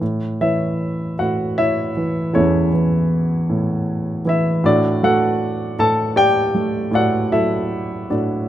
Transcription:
0.01 A2
0.41 E3 E4 C#5 E5
1.19 A2 F#4 F#5
1.58 E4 C#5 E5
1.97 E3
2.33 E2 C#4 E4 A4 C#5
2.73 E3
3.50 A2
4.25 E3 E4 E5
4.64 A2 D4 F#4 A4 D5
5.03 A3 F#4 A4 F#5
5.79 A2 A4 A5
6.16 G4 D5 G5
6.55 A3
6.91 A2 F#4 A4 D5 F#5
7.32 F#3 E4 A4 E5
8.10 A2 D4 F#4 D5

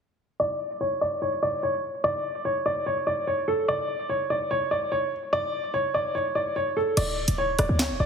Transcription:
0.40 D5
0.81 C#5
1.01 D5
1.22 C#5
1.43 D5
1.63 C#5
2.04 D5
2.45 C#5
2.66 D5
2.86 C#5
3.07 D5
3.27 C#5
3.48 A4
3.68 D5
4.09 C#5
4.30 D5
4.51 C#5
4.71 D5
4.92 C#5
5.33 D5
5.74 C#5
5.94 D5
6.15 C#5
6.35 D5
6.56 C#5
6.77 A4
6.97 D1 D5, closed hi-hat, crash
7.28 D1, closed hi-hat
7.38 C#5
7.59 D1 D5, cross-stick, closed hi-hat
7.69 D2
7.79 C#5, snare, clap, closed hi-hat
7.90 E1
8.00 C#1 D5

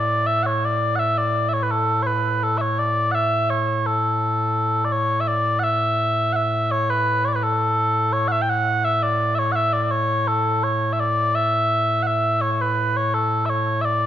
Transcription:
Already playing: A2 D5
0.27 E5
0.43 C#5 F#5
0.65 D5
0.96 E5 F#5
1.18 D5
1.49 E5
1.53 C#5
1.63 B4
1.71 A4
2.03 B4 C#5
2.44 A4
2.58 C#5 E5
2.79 D5
3.12 E5 F#5
3.50 C#5
3.87 A4
4.85 D5
4.92 C#5
5.20 E5
5.28 D5
5.59 F#5
5.64 E5
6.33 E5 F#5
6.71 C#5
6.90 B4
7.25 C#5 D5
7.34 B4
7.43 A4
8.13 C#5
8.28 F#5
8.32 E5
8.42 G5
8.49 F#5
8.85 E5
9.03 D5
9.35 C#5 E5
9.52 E5 F#5
9.73 D5
9.82 D5
9.91 C#5
10.28 A4
10.64 C#5
10.93 E5
11.00 D5
11.35 E5
12.03 F#5
12.07 E5
12.41 C#5
12.52 C#5
12.61 B4
12.97 C#5
13.14 A4
13.46 C#5 E5
13.81 D5 E5

